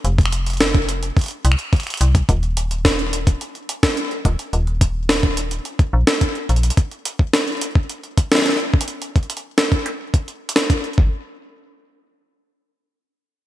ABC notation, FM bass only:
X:1
M:4/4
L:1/8
Q:1/4=107
K:Eb
V:1 name="FM bass" clef=bass
F,,,4 z C,, z C,, | E,,,4 z3 E,,, | E,,,4 z B,,, z B,,, | z8 |
z8 | z8 |]